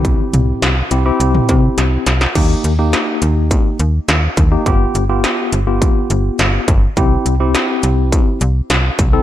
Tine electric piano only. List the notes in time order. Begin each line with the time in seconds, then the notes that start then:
Already playing: C4 E4 G4
0.91 C4 E4 G4
1.06 C4 E4 G4
2.35 A#3 D#4 G4
2.79 A#3 D#4 G4
4.52 A#3 D#4 G4
4.66 B3 F4 G4
5.09 B3 F4 G4
5.67 B3 F4 G4
6.97 C4 E4 G4
7.40 C4 E4 G4
9.13 C4 E4 A4